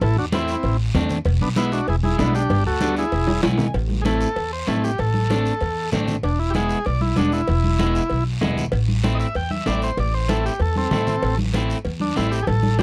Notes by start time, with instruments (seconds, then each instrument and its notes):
0.01 upright bass A1, transistor combo organ E4 A4, cowbell, high conga, long guiro
0.16 upright bass E2, transistor combo organ D4 F#4
0.32 clean electric guitar A3 C4 E4, transistor combo organ C4 E4, cowbell, high conga, short guiro
0.48 short guiro
0.63 upright bass A1, cowbell, high conga, long guiro
0.94 upright bass E2, clean electric guitar A3 C4 D4, cowbell, high conga, low conga, low timbale, short guiro
1.09 low conga, short guiro
1.25 upright bass E1, cowbell, high conga, long guiro
1.41 upright bass B1, transistor combo organ B3 D4, high conga
1.56 clean electric guitar G#3 B3 E4, transistor combo organ B3 E4, cowbell, high conga, short guiro
1.72 transistor combo organ D4 F#4, short guiro
1.87 upright bass E1, transistor combo organ E4 G#4, cowbell, high conga, long guiro
2.03 transistor combo organ E4 G#4, high conga
2.18 upright bass B1, clean electric guitar G#3 B3 D4, transistor combo organ B3 E4, cowbell, high conga, low timbale, short guiro
2.35 transistor combo organ D4 G4, short guiro
2.50 upright bass G1, cowbell, high conga, long guiro
2.66 upright bass D2, transistor combo organ F#4 A4
2.80 clean electric guitar G3 B3 D4, cowbell, high conga, short guiro
2.96 transistor combo organ E4 G#4, short guiro
3.12 upright bass E1, cowbell, high conga, long guiro
3.27 high conga, high timbale
3.43 upright bass B1, clean electric guitar G#3 B3 E4 G#5, cowbell, high conga, high timbale, short guiro
3.58 low conga, low timbale, short guiro
3.74 upright bass A1, cowbell, high conga, long guiro
3.90 high conga
4.02 clean electric guitar A3 C4, transistor combo organ G#4, cowbell, high conga, short guiro
4.06 clean electric guitar E4, transistor combo organ A4
4.21 short guiro
4.36 upright bass E2, cowbell, high conga, long guiro
4.53 transistor combo organ C5
4.67 upright bass A1, clean electric guitar A3 C4 E4, transistor combo organ A4, cowbell, high conga, low timbale, short guiro
4.84 transistor combo organ G4, short guiro
4.98 upright bass A1, transistor combo organ A4, cowbell, high conga, long guiro
5.14 high conga
5.30 clean electric guitar A3 C4 D4, cowbell, high conga, short guiro
5.45 short guiro
5.61 upright bass E2, cowbell, high conga, long guiro
5.92 upright bass A1, clean electric guitar A3 C4 D4, cowbell, high conga, low conga, low timbale, short guiro
6.07 low conga, short guiro
6.23 upright bass E1, transistor combo organ D4, cowbell, high conga, long guiro
6.39 transistor combo organ E4
6.50 transistor combo organ G4, short guiro
6.55 clean electric guitar G#3 B3 E4, transistor combo organ G#4, cowbell, high conga
6.69 short guiro
6.85 upright bass B1, transistor combo organ D5, cowbell, high conga, long guiro
7.01 transistor combo organ E4, high conga
7.16 upright bass E1, clean electric guitar G#3 B3 D4, transistor combo organ D4, cowbell, high conga, short guiro
7.32 transistor combo organ E4, short guiro
7.48 upright bass E1, cowbell, high conga, long guiro
7.64 high conga
7.79 clean electric guitar G#3 B3 E4, cowbell, high conga, short guiro
7.95 short guiro
8.10 upright bass B1, cowbell, high conga, long guiro
8.41 upright bass E1, clean electric guitar G#3 B3 E4, cowbell, high conga, low conga, low timbale, short guiro
8.57 low conga, short guiro
8.72 upright bass A1, cowbell, high conga, long guiro
8.88 high conga
9.04 clean electric guitar A3 C4 E4, cowbell, high conga, short guiro
9.15 transistor combo organ D#5
9.20 transistor combo organ E5, short guiro
9.35 upright bass E2, transistor combo organ G5, cowbell, high conga, long guiro
9.51 transistor combo organ E5, high conga
9.66 upright bass A1, clean electric guitar A3 C4 E4, transistor combo organ D5, cowbell, high conga, low timbale, short guiro
9.82 transistor combo organ C5, short guiro
9.97 upright bass A1, transistor combo organ D5, cowbell, high conga, long guiro
10.14 transistor combo organ C5
10.28 clean electric guitar A3 C4 E4, transistor combo organ A4, cowbell, high conga, short guiro
10.46 transistor combo organ G4, short guiro
10.60 upright bass E2, transistor combo organ A4, cowbell, high conga, long guiro
10.76 transistor combo organ C4 A4, high conga
10.91 upright bass A1, clean electric guitar A3 C4 E4, cowbell, high conga, low conga, low timbale, short guiro
11.07 low conga, short guiro
11.23 upright bass A1, cowbell, long guiro
11.39 high conga
11.54 clean electric guitar A3 C4 E4, cowbell, high conga, short guiro
11.70 short guiro
11.85 upright bass E2, cowbell, high conga, long guiro
12.00 transistor combo organ D4, high conga
12.16 upright bass A1, clean electric guitar A3 C4 E4, transistor combo organ E4, cowbell, high conga, low timbale, short guiro
12.32 transistor combo organ G4, short guiro
12.43 transistor combo organ G#4
12.47 upright bass A1, transistor combo organ A4, cowbell, high conga, long guiro
12.63 high conga
12.79 clean electric guitar A3, transistor combo organ G4, cowbell, high conga, high timbale, short guiro